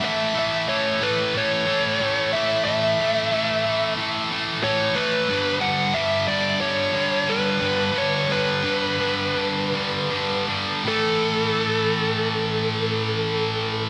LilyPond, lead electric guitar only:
\new Staff \with { instrumentName = "Lead electric guitar" } { \time 4/4 \key a \mixolydian \tempo 4 = 90 e''8 e''8 cis''8 b'8 cis''4. e''8 | e''2 r4 cis''8 b'8~ | b'8 fis''8 e''8 d''8 cis''4 b'4 | cis''8 b'2. r8 |
a'1 | }